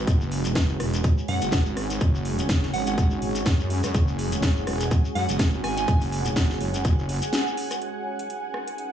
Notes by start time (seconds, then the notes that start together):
Already playing: G#3 D#4 F#4 B4
0.07 F#1 C#4 C#5, kick, closed hi-hat, shekere
0.21 shekere
0.29 G#4, open hi-hat
0.45 closed hi-hat, shekere
0.55 F#1, kick, snare, closed hi-hat, shekere
0.69 G#5, shekere
0.80 E1, cross-stick, open hi-hat
0.86 F#5
0.93 closed hi-hat, shekere
1.04 kick, closed hi-hat, shekere
1.18 shekere
1.28 F#2 F#5, open hi-hat
1.42 F#1, closed hi-hat, shekere
1.52 kick, snare, closed hi-hat, shekere
1.66 G#1, shekere
1.77 cross-stick, open hi-hat
1.90 closed hi-hat, shekere
2.00 F#1, kick, closed hi-hat, shekere
2.15 shekere
2.25 open hi-hat
2.39 closed hi-hat, shekere
2.49 F#1, kick, snare, closed hi-hat, shekere
2.63 snare, shekere
2.73 G#1 F#5, open hi-hat
2.87 F#5, closed hi-hat, shekere
2.98 kick, closed hi-hat, shekere
3.10 shekere
3.22 G#1, open hi-hat
3.35 closed hi-hat, shekere
3.46 F#2, kick, snare, closed hi-hat, shekere
3.60 shekere
3.70 open hi-hat
3.83 F#2, cross-stick, closed hi-hat, shekere
3.94 F#1, kick, closed hi-hat, shekere
4.08 shekere
4.19 open hi-hat
4.32 closed hi-hat, shekere
4.43 F#1, kick, snare, closed hi-hat, shekere
4.56 shekere
4.67 E1, cross-stick, open hi-hat
4.80 closed hi-hat, shekere
4.91 kick, closed hi-hat, shekere
5.05 shekere
5.15 F#2 F#5, open hi-hat
5.29 F#1, closed hi-hat, shekere
5.39 kick, snare, closed hi-hat, shekere
5.53 G#1, shekere
5.64 G#5, cross-stick, open hi-hat
5.77 G#5, closed hi-hat, shekere
5.88 F#1, kick, closed hi-hat, shekere
6.01 open hi-hat, shekere
6.12 open hi-hat
6.25 closed hi-hat, shekere
6.36 F#1, kick, snare, closed hi-hat, shekere
6.49 snare, shekere
6.61 F#1, open hi-hat
6.74 closed hi-hat, shekere
6.84 F#1, kick, closed hi-hat, shekere
6.99 shekere
7.09 open hi-hat
7.22 closed hi-hat, shekere
7.33 snare, closed hi-hat, shekere
7.47 shekere
7.57 open hi-hat
7.71 cross-stick, closed hi-hat, shekere
7.82 G#3 D#4 F#4 B4, closed hi-hat
8.09 B4
8.19 closed hi-hat
8.30 closed hi-hat
8.54 cross-stick
8.68 closed hi-hat
8.78 closed hi-hat